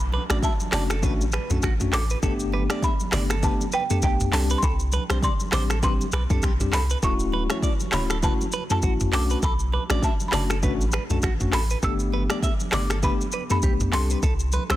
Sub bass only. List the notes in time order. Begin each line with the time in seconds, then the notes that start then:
Already playing: B1
0.30 A1
0.73 F#1
1.03 A1
1.50 B1
1.63 A1
1.93 A1
2.23 G1
3.13 G1
4.03 B1
4.33 C2
4.63 C2
5.10 B1
5.53 A1
6.13 B1
6.30 C2
6.43 B1
6.73 C2
7.03 D1
7.93 D1
8.83 A1
9.13 B1
9.43 B1
9.90 A1
10.33 F#1
10.63 A1
11.10 B1
11.23 A1
11.53 A1
11.83 G1
12.73 G1
13.63 B1
13.93 C2
14.23 C2
14.70 B1